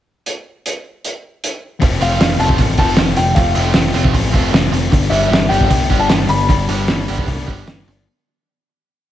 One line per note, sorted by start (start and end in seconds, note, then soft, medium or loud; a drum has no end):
0.26 closed hi-hat medium
0.66 closed hi-hat medium
1.05 closed hi-hat medium
1.44 closed hi-hat medium
1.79 2.00 F1 medium
1.79 2.40 F2 loud
1.79 2.16 C3 loud
1.79 2.02 F3 medium
1.79 2.01 A3 medium
1.79 1.99 C4 loud
1.79 muted overdriven electric guitar stroke soft
1.79 kick loud
1.79 open hi-hat medium
2.00 2.20 F1 medium
2.00 2.18 F3 medium
2.00 2.20 A3 medium
2.00 2.20 C4 medium
2.00 2.20 F4 medium
2.00 2.42 F5 loud
2.00 open hi-hat medium
2.18 2.39 F1 medium
2.18 2.39 C3 medium
2.18 2.38 F3 medium
2.18 2.38 A3 medium
2.18 2.37 C4 medium
2.18 muted overdriven electric guitar stroke soft
2.18 snare loud
2.18 open hi-hat medium
2.37 2.58 F1 medium
2.37 2.79 F2 medium
2.37 2.57 C3 medium
2.37 2.59 F3 medium
2.37 2.59 A3 medium
2.37 2.60 C4 medium
2.37 2.60 F4 medium
2.37 2.76 A5 medium
2.37 open hi-hat medium
2.49 kick medium
2.58 2.77 A1 medium
2.58 2.79 C3 medium
2.58 2.79 F3 medium
2.58 2.78 A3 medium
2.58 2.76 C4 medium
2.58 muted overdriven electric guitar stroke soft
2.58 kick medium
2.58 open hi-hat medium
2.77 2.97 F1 medium
2.77 3.19 F2 medium
2.77 2.95 C3 medium
2.77 2.98 F3 medium
2.77 2.98 A3 medium
2.77 2.99 C4 medium
2.77 2.98 F4 loud
2.77 3.19 A5 loud
2.77 kick medium
2.77 open hi-hat medium
2.96 3.17 F1 loud
2.96 3.34 C3 medium
2.96 3.19 F3 medium
2.96 3.17 A3 medium
2.96 3.15 C4 medium
2.96 muted overdriven electric guitar stroke soft
2.96 snare loud
2.96 open hi-hat medium
3.16 3.35 F1 loud
3.16 3.36 F3 medium
3.16 3.36 A3 medium
3.16 3.37 C4 medium
3.16 3.37 G5 medium
3.16 muted overdriven electric guitar stroke soft
3.16 open hi-hat medium
3.35 3.55 F1 medium
3.35 3.75 F2 medium
3.35 3.73 C3 medium
3.35 3.58 F3 loud
3.35 3.56 A3 medium
3.35 3.53 C4 loud
3.35 3.72 F5 medium
3.35 muted overdriven electric guitar stroke soft
3.35 kick loud
3.35 open hi-hat medium
3.55 3.74 F1 medium
3.55 3.75 F3 medium
3.55 3.76 A3 medium
3.55 3.77 C4 medium
3.55 3.75 F4 medium
3.55 open hi-hat medium
3.74 3.94 F1 medium
3.74 3.95 C3 medium
3.74 3.95 F3 medium
3.74 3.93 A3 medium
3.74 3.93 C4 medium
3.74 muted overdriven electric guitar stroke soft
3.74 snare loud
3.74 open hi-hat medium
3.94 4.13 F1 medium
3.94 4.35 F2 medium
3.94 4.12 C3 medium
3.94 4.15 F3 medium
3.94 4.15 A3 medium
3.94 4.16 C4 medium
3.94 4.13 F4 medium
3.94 open hi-hat soft
4.05 kick medium
4.13 4.33 A1 medium
4.13 4.34 C3 medium
4.13 4.34 F3 medium
4.13 4.33 A3 medium
4.13 4.32 C4 medium
4.13 muted overdriven electric guitar stroke soft
4.13 kick medium
4.13 open hi-hat medium
4.33 4.52 F1 medium
4.33 4.74 F2 medium
4.33 4.51 C3 medium
4.33 4.54 F3 medium
4.33 4.53 A3 medium
4.33 4.55 C4 medium
4.33 4.52 F4 loud
4.33 kick medium
4.33 open hi-hat medium
4.52 4.71 F1 loud
4.52 4.91 C3 medium
4.52 4.76 F3 medium
4.52 4.74 A3 medium
4.52 4.72 C4 medium
4.52 muted overdriven electric guitar stroke soft
4.52 snare loud
4.52 open hi-hat medium
4.71 4.91 F1 medium
4.71 4.93 A3 medium
4.71 4.92 C4 medium
4.71 muted overdriven electric guitar stroke soft
4.71 open hi-hat medium
4.76 4.92 F3 medium
4.91 5.10 G1 medium
4.91 5.52 G2 medium
4.91 5.28 D3 loud
4.91 5.12 G3 medium
4.91 5.12 B3 loud
4.91 5.10 D4 loud
4.91 muted overdriven electric guitar stroke soft
4.91 kick loud
4.91 open hi-hat medium
5.10 5.29 G1 medium
5.10 5.30 F3 medium
5.10 5.30 G3 medium
5.10 5.31 B3 medium
5.10 5.32 D4 medium
5.10 5.31 G4 loud
5.10 5.52 E5 medium
5.10 open hi-hat medium
5.29 5.49 G1 medium
5.29 5.50 D3 medium
5.29 5.50 G3 medium
5.29 5.50 B3 medium
5.29 5.48 D4 medium
5.29 muted overdriven electric guitar stroke soft
5.33 snare loud
5.33 open hi-hat medium
5.49 5.70 G1 medium
5.49 5.91 G2 medium
5.49 5.68 D3 medium
5.49 5.69 F3 medium
5.49 5.71 G3 medium
5.49 5.71 B3 medium
5.49 5.72 D4 medium
5.49 5.69 G4 medium
5.49 5.96 G5 medium
5.49 open hi-hat medium
5.61 kick medium
5.70 5.90 C2 medium
5.70 5.89 D3 medium
5.70 5.90 G3 medium
5.70 5.89 B3 medium
5.70 5.87 D4 medium
5.70 muted overdriven electric guitar stroke soft
5.70 kick medium
5.70 open hi-hat medium
5.88 6.09 G1 medium
5.88 6.48 G2 medium
5.88 6.08 D3 medium
5.88 6.09 F3 medium
5.88 6.10 G3 medium
5.88 6.11 B3 loud
5.88 6.12 D4 medium
5.88 6.10 G4 medium
5.88 kick medium
5.88 open hi-hat medium
5.99 6.30 A5 loud
6.09 6.28 G1 loud
6.09 6.48 D3 medium
6.09 6.31 G3 medium
6.09 6.29 B3 medium
6.09 6.27 D4 medium
6.09 muted overdriven electric guitar stroke soft
6.09 snare loud
6.09 open hi-hat medium
6.27 6.48 G1 medium
6.27 6.48 G3 medium
6.27 6.50 B3 medium
6.27 6.50 D4 medium
6.27 7.63 B5 loud
6.27 muted overdriven electric guitar stroke soft
6.27 open hi-hat medium
6.48 6.68 G1 medium
6.48 6.88 G2 medium
6.48 6.86 D3 loud
6.48 6.70 G3 loud
6.48 6.68 B3 medium
6.48 6.66 D4 loud
6.48 muted overdriven electric guitar stroke medium
6.48 kick loud
6.48 open hi-hat medium
6.68 6.88 G1 medium
6.68 6.88 F3 medium
6.68 6.87 G3 medium
6.68 6.88 B3 medium
6.68 6.89 D4 medium
6.68 6.88 G4 loud
6.68 open hi-hat medium
6.87 7.08 G1 medium
6.87 7.09 D3 medium
6.87 7.08 G3 medium
6.87 7.08 B3 medium
6.87 7.06 D4 medium
6.87 muted overdriven electric guitar stroke soft
6.87 snare loud
6.87 open hi-hat medium
7.08 7.27 G1 medium
7.08 7.49 G2 medium
7.08 7.27 D3 medium
7.08 7.27 F3 medium
7.08 7.28 G3 medium
7.08 7.29 B3 medium
7.08 7.30 D4 medium
7.08 7.27 G4 medium
7.08 open hi-hat medium
7.18 kick medium
7.28 7.47 C2 loud
7.28 7.49 D3 medium
7.28 7.48 G3 medium
7.28 7.48 B3 medium
7.28 7.47 D4 medium
7.28 muted overdriven electric guitar stroke soft
7.28 kick medium
7.28 open hi-hat medium
7.47 7.67 G1 medium
7.47 7.66 D3 medium
7.47 7.66 F3 medium
7.47 7.67 G3 medium
7.47 7.68 B3 medium
7.47 7.69 D4 medium
7.47 7.67 G4 loud
7.47 kick medium
7.47 open hi-hat medium
7.51 7.89 G2 medium
7.67 7.86 G1 loud
7.67 8.05 D3 medium
7.67 7.89 G3 medium
7.67 7.88 B3 medium
7.67 7.86 D4 medium
7.67 muted overdriven electric guitar stroke soft
7.67 snare loud
7.67 open hi-hat medium
7.87 8.06 G1 medium
7.87 8.07 G3 medium
7.87 8.07 B3 medium
7.87 8.06 D4 medium
7.87 muted overdriven electric guitar stroke soft
7.87 open hi-hat medium